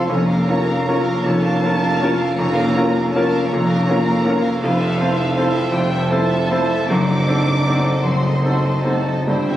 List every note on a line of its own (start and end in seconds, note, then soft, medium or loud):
0.00 0.10 F1 soft
0.00 0.10 F2 medium
0.00 0.11 C4 soft
0.00 0.11 F4 medium
0.00 0.11 A4 medium
0.07 1.10 F1 medium
0.07 0.47 F1 medium
0.07 1.10 F2 medium
0.07 0.47 F2 medium
0.07 1.23 A#3 medium
0.07 2.18 A#3 medium
0.07 0.25 C#4 medium
0.07 2.18 C#4 medium
0.07 0.26 F4 medium
0.07 0.26 C#5 medium
0.07 1.24 A#5 medium
0.26 0.46 A#3 medium
0.26 0.45 C#4 medium
0.26 0.47 A#4 soft
0.26 0.47 F5 medium
0.45 0.65 C#4 soft
0.45 0.82 C#4 medium
0.45 0.65 F4 soft
0.45 0.67 C#5 medium
0.50 0.83 F4 soft
0.50 0.83 A#4 medium
0.66 0.85 A#3 medium
0.66 0.84 C#4 medium
0.66 0.85 A#4 soft
0.66 0.85 F5 medium
0.85 1.03 C#4 medium
0.85 1.21 C#4 medium
0.85 1.03 F4 medium
0.85 1.21 F4 medium
0.85 1.22 A#4 medium
0.85 1.03 C#5 medium
1.05 1.24 A#3 medium
1.05 1.22 C#4 medium
1.05 1.23 A#4 medium
1.05 1.23 F5 medium
1.22 2.23 F1 medium
1.22 1.61 F1 medium
1.22 2.22 F2 medium
1.22 1.61 F2 medium
1.22 2.36 A3 medium
1.22 1.41 C#4 medium
1.22 1.42 F4 medium
1.22 1.43 C#5 medium
1.22 2.36 A5 loud
1.42 1.61 A#3 medium
1.42 1.60 C#4 medium
1.42 1.61 A#4 medium
1.42 1.61 F5 medium
1.61 1.79 C#4 medium
1.61 1.96 C#4 medium
1.61 1.78 F4 medium
1.61 1.79 C#5 medium
1.65 1.97 F4 medium
1.65 1.97 A#4 medium
1.80 1.99 A#3 medium
1.80 1.97 C#4 medium
1.80 1.99 A#4 medium
1.80 1.99 F5 medium
1.99 2.16 C#4 medium
1.99 2.34 C#4 medium
1.99 2.17 F4 medium
1.99 2.18 C#5 medium
2.03 2.35 F4 medium
2.03 2.35 A#4 medium
2.16 2.36 A#3 medium
2.16 2.36 C#4 medium
2.16 2.35 A#4 medium
2.16 2.35 F5 medium
2.35 3.36 F1 medium
2.35 2.74 F1 medium
2.35 3.36 F2 medium
2.35 2.74 F2 medium
2.35 3.47 A#3 medium
2.35 3.10 A#3 medium
2.35 3.47 C#4 medium
2.35 2.54 C#4 medium
2.35 2.54 F4 medium
2.35 2.53 C#5 medium
2.35 3.12 A#5 loud
2.52 2.74 A#3 medium
2.52 2.73 C#4 medium
2.52 2.73 A#4 medium
2.52 2.72 F5 medium
2.71 2.92 C#4 medium
2.71 2.92 C#5 medium
2.75 3.09 C#4 medium
2.75 2.93 F4 medium
2.75 3.10 F4 medium
2.75 3.10 A#4 medium
2.92 3.12 A#3 medium
2.92 3.11 C#4 medium
2.92 3.11 A#4 medium
2.92 3.12 F5 medium
3.10 3.49 A3 medium
3.10 3.29 C#4 medium
3.10 3.30 F4 medium
3.10 3.28 C#5 medium
3.10 3.48 A5 medium
3.16 3.48 C#4 medium
3.16 3.48 F4 medium
3.16 3.48 A#4 medium
3.29 3.49 A#3 medium
3.29 3.49 C#4 medium
3.29 3.49 A#4 medium
3.29 3.49 F5 medium
3.46 4.48 F2 medium
3.46 4.61 A#3 medium
3.46 4.59 A#3 medium
3.46 4.59 C#4 medium
3.46 3.66 C#5 medium
3.46 4.59 A#5 loud
3.50 4.48 F1 medium
3.50 3.87 F1 medium
3.50 3.87 F2 medium
3.50 3.69 C#4 medium
3.50 3.69 F4 medium
3.66 3.87 A#3 medium
3.66 3.86 A#4 medium
3.66 3.85 F5 medium
3.70 3.87 C#4 medium
3.84 4.02 C#5 medium
3.88 4.05 C#4 medium
3.88 4.21 C#4 medium
3.88 4.05 F4 medium
3.88 4.22 F4 medium
3.88 4.22 A#4 medium
4.04 4.23 A#4 medium
4.04 4.23 F5 medium
4.08 4.25 A#3 medium
4.08 4.25 C#4 medium
4.23 4.58 C#4 medium
4.23 4.58 F4 medium
4.23 4.58 A#4 medium
4.23 4.42 C#5 medium
4.27 4.43 C#4 medium
4.27 4.44 F4 medium
4.41 4.62 A#3 medium
4.41 4.62 C#4 medium
4.41 4.61 A#4 medium
4.41 4.60 F5 medium
4.59 5.59 F1 medium
4.59 5.59 F2 medium
4.59 5.69 F3 medium
4.59 6.85 A3 medium
4.59 4.78 A3 medium
4.59 6.85 C4 medium
4.59 4.78 E4 medium
4.59 4.77 F4 medium
4.59 4.77 C5 medium
4.59 5.69 F5 loud
4.64 4.98 F1 medium
4.64 4.98 F2 medium
4.79 4.98 C4 medium
4.79 4.98 F4 medium
4.79 4.98 A4 medium
4.79 4.98 E5 medium
4.97 5.17 A3 medium
4.97 5.17 E4 medium
4.97 5.16 F4 medium
4.97 5.16 C5 medium
5.01 5.33 C4 medium
5.01 5.33 E4 medium
5.01 5.33 A4 medium
5.16 5.35 C4 medium
5.16 5.35 F4 medium
5.16 5.35 A4 medium
5.16 5.35 E5 medium
5.32 5.53 A3 medium
5.32 5.52 E4 medium
5.32 5.51 F4 medium
5.32 5.51 C5 medium
5.37 5.69 C4 medium
5.37 5.70 E4 medium
5.37 5.70 A4 medium
5.52 5.72 C4 medium
5.52 5.72 F4 medium
5.52 5.71 A4 medium
5.52 5.71 E5 medium
5.71 6.75 F1 medium
5.71 6.09 F1 medium
5.71 6.75 F2 medium
5.71 6.09 F2 medium
5.71 6.09 G3 medium
5.71 5.91 A3 medium
5.71 5.91 E4 medium
5.71 5.90 F4 medium
5.71 5.90 C5 medium
5.71 6.09 G5 medium
5.90 6.11 C4 medium
5.90 6.11 F4 medium
5.90 6.09 A4 medium
5.90 6.09 E5 medium
6.08 6.89 A3 medium
6.08 6.46 C4 medium
6.08 6.46 E4 medium
6.08 6.29 E4 soft
6.08 6.28 F4 medium
6.08 6.46 A4 medium
6.08 6.28 C5 medium
6.08 6.89 A5 medium
6.13 6.29 A3 medium
6.28 6.50 C4 medium
6.28 6.50 F4 medium
6.28 6.49 A4 medium
6.28 6.48 E5 medium
6.49 6.70 A3 medium
6.49 6.86 C4 medium
6.49 6.70 E4 medium
6.49 6.86 E4 medium
6.49 6.69 F4 medium
6.49 6.86 A4 medium
6.49 6.69 C5 medium
6.68 6.90 C4 medium
6.68 6.90 F4 medium
6.68 6.89 A4 medium
6.68 6.89 E5 medium
6.87 7.90 F#1 medium
6.87 7.27 F#1 medium
6.87 7.90 F#2 medium
6.87 7.27 F#2 medium
6.87 8.02 A3 medium
6.87 7.08 A3 medium
6.87 8.02 C4 medium
6.87 8.04 D4 medium
6.87 7.08 D#4 medium
6.87 7.07 F#4 medium
6.87 7.07 C5 medium
6.87 8.03 D6 loud
7.07 7.28 C4 medium
7.07 7.28 F#4 medium
7.07 7.27 A4 medium
7.07 7.27 D#5 medium
7.27 7.47 A3 soft
7.27 7.62 C4 soft
7.27 7.47 D#4 medium
7.27 7.62 D#4 medium
7.27 7.46 F#4 soft
7.27 7.62 A4 medium
7.27 7.46 C5 medium
7.45 7.66 C4 soft
7.45 7.66 F#4 soft
7.45 7.65 A4 soft
7.45 7.65 D#5 soft
7.65 7.83 A3 medium
7.65 8.01 C4 soft
7.65 7.83 D#4 medium
7.65 8.01 D#4 medium
7.65 7.83 F#4 medium
7.65 8.02 A4 medium
7.65 7.84 C5 soft
7.84 8.04 C4 medium
7.84 8.04 F#4 soft
7.84 8.04 A4 soft
7.84 8.04 D#5 soft
8.04 9.13 F#1 medium
8.04 8.43 F#1 medium
8.04 8.43 F#2 medium
8.04 9.12 F#2 medium
8.04 8.24 A3 soft
8.04 9.10 A3 medium
8.04 9.10 C4 medium
8.04 8.86 C4 medium
8.04 8.24 D#4 soft
8.04 8.24 F#4 medium
8.04 8.24 C5 soft
8.04 8.85 C6 medium
8.24 8.45 C4 soft
8.24 8.45 F#4 soft
8.24 8.45 A4 soft
8.24 8.45 D#5 soft
8.43 8.63 A3 soft
8.43 8.81 C4 soft
8.43 8.81 D#4 soft
8.43 8.63 D#4 soft
8.43 8.63 F#4 soft
8.43 8.82 A4 soft
8.43 8.63 C5 soft
8.64 8.85 C4 soft
8.64 8.85 F#4 soft
8.64 8.85 A4 soft
8.64 8.85 D#5 soft
8.83 9.06 A3 soft
8.83 9.28 A3 medium
8.83 9.23 C4 soft
8.83 9.06 D#4 soft
8.83 9.24 D#4 soft
8.83 9.05 F#4 soft
8.83 9.24 A4 soft
8.83 9.06 C5 soft
8.83 9.27 A5 medium
9.05 9.28 C4 soft
9.05 9.28 F#4 soft
9.05 9.27 A4 soft
9.05 9.27 D#5 soft
9.25 9.57 G1 soft
9.25 9.57 G1 medium
9.25 9.57 G2 medium
9.25 9.57 E3 medium
9.25 9.57 G3 medium
9.25 9.48 G3 soft
9.25 9.57 C4 medium
9.25 9.46 E4 soft
9.25 9.47 E4 soft
9.25 9.46 C5 soft
9.25 9.57 G5 medium
9.49 9.57 C4 soft
9.49 9.57 G4 soft
9.49 9.57 E5 soft